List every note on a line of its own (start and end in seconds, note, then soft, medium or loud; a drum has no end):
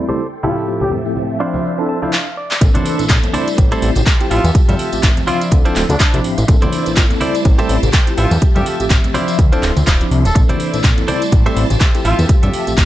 0.00 1.39 A4 medium
0.00 1.39 G5 medium
0.00 0.42 C6 medium
0.09 0.20 G3 medium
0.09 0.20 A3 medium
0.09 0.21 C4 medium
0.09 0.21 E4 medium
0.09 0.26 G4 medium
0.09 0.21 A4 medium
0.09 0.26 A4 medium
0.09 0.26 C5 medium
0.09 tambourine medium
0.09 high conga medium
0.19 tambourine medium
0.33 tambourine soft
0.43 0.65 A2 medium
0.43 0.65 F3 medium
0.43 2.11 F3 medium
0.43 0.65 A3 medium
0.43 1.40 A3 medium
0.43 0.84 A3 medium
0.43 0.65 C4 medium
0.43 0.84 E4 medium
0.43 0.65 E4 medium
0.43 0.56 F4 medium
0.43 0.84 F4 medium
0.43 0.84 G4 medium
0.43 0.66 G4 medium
0.43 0.84 A4 medium
0.43 1.39 E5 medium
0.43 high conga medium
0.57 tambourine medium
0.67 1.02 A2 medium
0.67 1.02 F3 medium
0.67 1.02 A3 medium
0.67 1.03 C4 medium
0.67 1.03 G4 medium
0.67 1.03 E5 medium
0.67 tambourine medium
0.81 0.91 G4 medium
0.81 tambourine soft
0.81 high conga medium
0.91 muted clean electric guitar stroke soft
0.91 low conga medium
1.05 1.38 A2 medium
1.05 1.38 F3 medium
1.05 1.38 A3 medium
1.05 1.38 C4 medium
1.05 1.38 G4 medium
1.05 1.38 E5 medium
1.05 tambourine medium
1.16 tambourine medium
1.16 high conga medium
1.30 tambourine soft
1.40 1.75 F3 medium
1.40 1.75 C4 medium
1.40 1.89 D4 loud
1.40 1.75 D4 medium
1.40 2.12 D4 medium
1.40 1.88 E4 medium
1.40 1.89 F4 medium
1.40 2.12 C5 medium
1.40 1.89 C5 medium
1.40 1.75 D5 medium
1.40 1.75 E5 medium
1.40 2.12 E5 medium
1.54 tambourine medium
1.54 high conga medium
1.64 tambourine medium
1.78 1.98 F3 medium
1.78 1.98 C4 medium
1.78 1.98 D4 medium
1.78 1.99 E4 medium
1.78 1.99 A4 loud
1.78 tambourine soft
1.89 2.02 A5 medium
2.02 2.13 F3 medium
2.02 2.13 C4 medium
2.02 2.13 D4 medium
2.02 2.13 E4 medium
2.02 2.13 F4 medium
2.02 2.13 A4 medium
2.02 2.13 C5 medium
2.02 tambourine medium
2.02 high conga medium
2.13 clap loud
2.37 2.60 D5 medium
2.51 clap medium
2.61 2.70 A#1 loud
2.61 2.96 E3 medium
2.61 2.96 A#3 medium
2.61 2.96 C4 medium
2.61 3.57 D4 medium
2.61 2.96 D4 medium
2.61 3.57 A4 medium
2.61 2.96 A4 medium
2.61 4.29 C5 medium
2.61 3.57 E5 medium
2.61 muted clean electric guitar stroke loud
2.61 kick loud
2.61 closed hi-hat medium
2.61 tambourine medium
2.75 3.04 D4 loud
2.75 3.05 E4 medium
2.75 3.05 A4 medium
2.75 3.05 C5 medium
2.75 closed hi-hat soft
2.75 tambourine soft
2.75 high conga medium
2.75 low conga loud
2.86 open hi-hat loud
2.99 3.08 A#1 soft
2.99 3.31 E3 medium
2.99 3.31 A#3 medium
2.99 3.31 C4 medium
2.99 3.32 D4 medium
2.99 3.32 A4 medium
2.99 closed hi-hat soft
2.99 tambourine medium
3.10 3.18 A#1 loud
3.10 kick loud
3.10 clap loud
3.10 closed hi-hat loud
3.23 closed hi-hat soft
3.23 tambourine soft
3.23 low conga medium
3.34 3.68 G3 medium
3.34 3.69 A3 medium
3.34 3.69 C4 medium
3.34 3.48 D4 loud
3.34 3.48 E4 medium
3.34 3.69 E4 medium
3.34 3.48 A4 medium
3.34 3.48 C5 loud
3.34 3.69 D5 medium
3.34 open hi-hat loud
3.34 high conga medium
3.48 closed hi-hat soft
3.48 tambourine medium
3.58 3.74 A1 loud
3.58 5.26 G4 medium
3.58 5.26 A5 medium
3.58 muted clean electric guitar stroke soft
3.58 kick loud
3.58 closed hi-hat loud
3.71 3.92 G3 loud
3.71 3.92 A3 medium
3.71 3.92 C4 medium
3.71 3.89 E4 loud
3.71 3.92 E4 medium
3.71 3.89 G4 loud
3.71 3.89 A4 loud
3.71 3.92 A4 loud
3.71 3.90 C5 loud
3.71 closed hi-hat soft
3.71 tambourine soft
3.82 3.91 A1 medium
3.82 open hi-hat loud
3.95 4.03 A1 medium
3.95 closed hi-hat soft
3.95 tambourine medium
3.95 high conga medium
4.06 4.25 E4 medium
4.06 4.26 G4 medium
4.06 4.26 A4 medium
4.06 4.26 C5 medium
4.06 kick loud
4.06 clap loud
4.06 closed hi-hat loud
4.20 4.41 F3 medium
4.20 4.41 A3 medium
4.20 4.41 C4 medium
4.20 4.41 E4 medium
4.20 4.41 G4 loud
4.20 closed hi-hat soft
4.20 tambourine soft
4.30 4.39 A1 medium
4.30 4.60 F4 loud
4.30 4.43 F4 loud
4.30 4.61 G4 medium
4.30 4.61 A4 medium
4.30 6.46 E5 medium
4.30 4.61 E5 loud
4.30 open hi-hat medium
4.44 4.51 E2 loud
4.44 closed hi-hat soft
4.44 tambourine medium
4.44 low conga medium
4.55 4.66 G2 soft
4.55 4.89 F3 medium
4.55 4.90 A3 medium
4.55 4.90 C4 medium
4.55 4.90 G4 medium
4.55 4.90 E5 medium
4.55 kick loud
4.55 closed hi-hat medium
4.55 tambourine medium
4.68 4.75 G2 medium
4.68 4.98 F4 medium
4.68 4.98 G4 medium
4.68 4.98 A4 medium
4.68 4.98 E5 medium
4.68 closed hi-hat soft
4.68 tambourine soft
4.68 high conga medium
4.68 low conga loud
4.79 open hi-hat loud
4.92 5.01 A1 soft
4.92 5.25 F3 medium
4.92 5.25 A3 medium
4.92 5.25 C4 medium
4.92 5.25 G4 medium
4.92 5.25 E5 medium
4.92 closed hi-hat soft
4.92 tambourine medium
5.03 5.12 A1 loud
5.03 kick loud
5.03 clap loud
5.03 closed hi-hat medium
5.17 closed hi-hat soft
5.17 tambourine soft
5.17 low conga medium
5.27 5.62 F3 medium
5.27 6.47 F3 medium
5.27 5.62 C4 medium
5.27 5.62 D4 medium
5.27 5.57 E4 medium
5.27 5.57 F4 medium
5.27 5.40 F4 loud
5.27 5.57 C5 medium
5.27 5.57 D5 medium
5.27 5.63 D5 medium
5.27 5.62 E5 medium
5.27 6.47 C6 medium
5.27 open hi-hat loud
5.27 high conga medium
5.41 closed hi-hat soft
5.41 tambourine medium
5.51 5.65 D2 medium
5.51 kick loud
5.51 closed hi-hat loud
5.51 tambourine medium
5.51 low conga medium
5.65 5.74 D1 soft
5.65 5.85 F3 loud
5.65 5.85 C4 medium
5.65 5.86 D4 loud
5.65 5.83 E4 loud
5.65 5.86 E4 loud
5.65 5.83 F4 loud
5.65 5.86 A4 loud
5.65 5.83 C5 loud
5.65 5.83 D5 loud
5.65 closed hi-hat soft
5.65 tambourine soft
5.76 5.84 D1 medium
5.76 clap medium
5.76 open hi-hat loud
5.89 5.96 D2 loud
5.89 6.24 D4 medium
5.89 closed hi-hat soft
5.89 tambourine medium
5.89 high conga loud
6.00 6.19 E4 medium
6.00 6.19 F4 medium
6.00 6.19 C5 medium
6.00 6.19 D5 medium
6.00 kick loud
6.00 clap loud
6.00 closed hi-hat medium
6.13 6.20 C2 loud
6.13 6.34 F3 medium
6.13 6.34 C4 medium
6.13 6.34 D4 medium
6.13 6.34 E4 medium
6.13 6.35 G4 loud
6.13 closed hi-hat soft
6.13 tambourine soft
6.24 6.35 A1 soft
6.24 open hi-hat loud
6.38 6.45 A1 medium
6.38 muted clean electric guitar stroke soft
6.38 closed hi-hat soft
6.38 tambourine medium
6.48 6.57 A#1 loud
6.48 6.83 E3 medium
6.48 6.83 A#3 medium
6.48 6.83 C4 medium
6.48 6.83 D4 medium
6.48 7.44 E4 medium
6.48 6.83 A4 medium
6.48 8.16 C5 medium
6.48 7.44 D5 medium
6.48 9.12 A5 medium
6.48 muted clean electric guitar stroke loud
6.48 kick loud
6.48 closed hi-hat medium
6.48 tambourine medium
6.62 6.91 E4 medium
6.62 6.92 A4 medium
6.62 6.92 C5 medium
6.62 6.92 D5 medium
6.62 closed hi-hat soft
6.62 tambourine soft
6.62 high conga medium
6.62 low conga medium
6.73 open hi-hat loud
6.86 6.95 A#1 soft
6.86 7.18 E3 medium
6.86 7.19 A#3 medium
6.86 7.19 C4 medium
6.86 7.19 D4 medium
6.86 7.19 A4 medium
6.86 closed hi-hat soft
6.86 tambourine medium
6.97 7.05 A#1 medium
6.97 kick loud
6.97 clap loud
6.97 closed hi-hat medium
6.97 tambourine medium
7.10 closed hi-hat soft
7.10 tambourine soft
7.10 low conga medium
7.21 7.56 G3 medium
7.21 7.56 A3 medium
7.21 7.56 C4 medium
7.21 7.35 E4 medium
7.21 7.56 E4 medium
7.21 7.35 A4 medium
7.21 7.35 C5 medium
7.21 7.35 D5 loud
7.21 7.56 D5 medium
7.21 open hi-hat loud
7.21 high conga medium
7.35 closed hi-hat soft
7.35 tambourine medium
7.45 7.61 A1 loud
7.45 8.17 G4 medium
7.45 muted clean electric guitar stroke soft
7.45 kick loud
7.45 closed hi-hat medium
7.45 tambourine medium
7.58 7.79 G3 loud
7.58 7.79 A3 medium
7.58 7.79 C4 medium
7.58 7.79 E4 medium
7.58 7.76 G4 loud
7.58 7.76 A4 loud
7.58 7.79 A4 loud
7.58 7.76 C5 loud
7.58 7.76 E5 loud
7.58 closed hi-hat soft
7.58 tambourine soft
7.69 7.78 A1 medium
7.69 open hi-hat loud
7.83 7.90 A1 medium
7.83 closed hi-hat soft
7.83 tambourine medium
7.83 high conga medium
7.93 8.12 G4 medium
7.93 8.13 A4 medium
7.93 8.13 C5 medium
7.93 8.13 G5 loud
7.93 kick loud
7.93 clap loud
7.93 closed hi-hat medium
7.93 tambourine medium
8.07 8.28 F3 medium
8.07 8.28 A3 medium
8.07 8.28 C4 medium
8.07 8.28 E4 medium
8.07 8.28 G4 loud
8.07 closed hi-hat soft
8.07 tambourine soft
8.18 8.26 A1 medium
8.18 8.30 F4 medium
8.18 8.47 F4 medium
8.18 8.47 G4 medium
8.18 9.14 G4 medium
8.18 8.48 A4 loud
8.18 8.48 E5 loud
8.18 10.34 E5 medium
8.18 open hi-hat loud
8.31 8.38 E2 loud
8.31 closed hi-hat soft
8.31 tambourine medium
8.31 low conga medium
8.42 8.53 G2 soft
8.42 8.77 F3 medium
8.42 8.77 A3 medium
8.42 8.77 C4 medium
8.42 8.77 G4 medium
8.42 8.77 E5 medium
8.42 kick loud
8.42 closed hi-hat medium
8.55 8.62 G2 medium
8.55 8.85 F4 loud
8.55 8.65 G4 medium
8.55 8.85 G4 medium
8.55 8.85 A4 medium
8.55 8.85 E5 medium
8.55 closed hi-hat soft
8.55 tambourine soft
8.55 high conga medium
8.55 low conga medium
8.66 open hi-hat loud
8.80 8.88 A1 soft
8.80 9.12 F3 medium
8.80 9.12 A3 medium
8.80 9.12 C4 medium
8.80 9.12 G4 medium
8.80 9.12 E5 medium
8.80 closed hi-hat soft
8.80 tambourine medium
8.90 8.99 A1 loud
8.90 kick loud
8.90 clap loud
8.90 closed hi-hat medium
9.04 closed hi-hat soft
9.04 tambourine soft
9.04 low conga medium
9.14 9.49 F3 medium
9.14 10.34 F3 medium
9.14 9.49 C4 medium
9.14 9.49 D4 medium
9.14 9.44 E4 medium
9.14 9.44 F4 medium
9.14 9.44 C5 medium
9.14 9.44 D5 medium
9.14 9.50 D5 medium
9.14 9.49 E5 medium
9.14 10.34 C6 medium
9.14 open hi-hat loud
9.14 high conga medium
9.28 closed hi-hat soft
9.28 tambourine medium
9.38 9.52 D2 medium
9.38 kick loud
9.38 closed hi-hat medium
9.38 tambourine medium
9.38 low conga medium
9.52 9.61 D1 soft
9.52 9.73 F3 loud
9.52 9.73 C4 medium
9.52 9.73 D4 medium
9.52 9.70 E4 loud
9.52 9.73 E4 loud
9.52 9.70 F4 loud
9.52 9.73 A4 loud
9.52 9.70 C5 loud
9.52 9.70 D5 loud
9.52 closed hi-hat soft
9.52 tambourine soft
9.63 9.71 D1 medium
9.63 clap medium
9.63 open hi-hat loud
9.77 9.83 D2 medium
9.77 closed hi-hat soft
9.77 tambourine medium
9.77 high conga medium
9.87 10.03 D1 medium
9.87 10.06 E4 medium
9.87 10.06 F4 medium
9.87 10.06 C5 medium
9.87 10.06 D5 medium
9.87 kick loud
9.87 clap loud
9.87 closed hi-hat medium
9.87 tambourine medium
10.00 10.21 F3 loud
10.00 10.21 C4 medium
10.00 10.21 D4 medium
10.00 10.22 E4 medium
10.00 10.22 G4 loud
10.00 closed hi-hat soft
10.00 tambourine soft
10.11 10.26 C2 loud
10.11 open hi-hat medium
10.25 10.32 D1 loud
10.25 10.41 A4 medium
10.25 muted clean electric guitar stroke soft
10.25 closed hi-hat soft
10.25 tambourine medium
10.35 10.44 A#1 loud
10.35 10.70 E3 medium
10.35 10.70 A#3 medium
10.35 10.70 C4 medium
10.35 10.70 D4 medium
10.35 11.31 E4 medium
10.35 10.71 A4 medium
10.35 12.03 C5 medium
10.35 11.31 D5 medium
10.35 12.85 A5 medium
10.35 muted clean electric guitar stroke loud
10.35 kick loud
10.35 closed hi-hat medium
10.35 tambourine medium
10.49 10.79 E4 medium
10.49 10.79 A4 medium
10.49 10.79 C5 medium
10.49 10.79 D5 medium
10.49 closed hi-hat soft
10.49 tambourine soft
10.49 high conga medium
10.49 low conga medium
10.60 open hi-hat loud
10.73 10.82 A#1 soft
10.73 11.06 E3 medium
10.73 11.06 A#3 medium
10.73 11.06 C4 medium
10.73 11.06 D4 medium
10.73 11.06 A4 medium
10.73 closed hi-hat soft
10.73 tambourine medium
10.84 10.93 A#1 loud
10.84 kick loud
10.84 clap loud
10.84 closed hi-hat medium
10.98 closed hi-hat soft
10.98 tambourine soft
10.98 low conga medium
11.08 11.43 G3 medium
11.08 11.43 A3 medium
11.08 11.43 C4 medium
11.08 11.22 E4 medium
11.08 11.43 E4 medium
11.08 11.22 A4 medium
11.08 11.22 C5 medium
11.08 11.43 D5 medium
11.08 11.22 D5 medium
11.08 open hi-hat loud
11.08 high conga medium
11.22 closed hi-hat soft
11.22 tambourine medium
11.32 11.49 A1 loud
11.32 12.85 G4 medium
11.32 muted clean electric guitar stroke soft
11.32 kick loud
11.32 closed hi-hat medium
11.32 tambourine medium
11.46 11.66 G3 loud
11.46 11.66 A3 medium
11.46 11.66 C4 medium
11.46 11.66 E4 loud
11.46 11.63 G4 loud
11.46 11.63 A4 loud
11.46 11.66 A4 loud
11.46 11.64 C5 loud
11.46 11.64 E5 loud
11.46 closed hi-hat soft
11.46 tambourine soft
11.56 11.65 A1 medium
11.56 open hi-hat loud
11.70 11.77 A1 medium
11.70 closed hi-hat soft
11.70 tambourine medium
11.70 high conga medium
11.80 12.00 G4 medium
11.80 12.00 A4 medium
11.80 12.00 C5 medium
11.80 12.00 E5 medium
11.80 kick loud
11.80 clap loud
11.80 closed hi-hat medium
11.80 tambourine medium
11.94 12.15 F3 medium
11.94 12.15 A3 medium
11.94 12.15 C4 medium
11.94 12.15 E4 medium
11.94 12.15 G4 loud
11.94 closed hi-hat soft
11.94 tambourine soft
12.05 12.13 A1 medium
12.05 12.35 F4 medium
12.05 12.17 F4 loud
12.05 12.35 G4 medium
12.05 12.35 A4 medium
12.05 12.85 E5 medium
12.05 12.35 E5 loud
12.05 open hi-hat medium
12.19 12.25 E2 loud
12.19 closed hi-hat soft
12.19 tambourine medium
12.19 low conga medium
12.29 12.40 G2 soft
12.29 12.64 F3 medium
12.29 12.64 A3 medium
12.29 12.64 C4 medium
12.29 12.64 G4 medium
12.29 12.64 E5 medium
12.29 kick loud
12.29 closed hi-hat medium
12.43 12.50 G2 medium
12.43 12.72 F4 medium
12.43 12.72 G4 medium
12.43 12.72 A4 medium
12.43 12.73 E5 loud
12.43 closed hi-hat soft
12.43 tambourine soft
12.43 high conga medium
12.43 low conga medium
12.54 open hi-hat loud
12.67 12.76 A1 soft
12.67 12.85 F3 medium
12.67 12.85 A3 medium
12.67 12.85 C4 medium
12.67 12.85 G4 medium
12.67 12.85 E5 medium
12.67 closed hi-hat soft
12.67 tambourine medium
12.78 12.85 A1 loud
12.78 kick loud
12.78 clap loud
12.78 closed hi-hat medium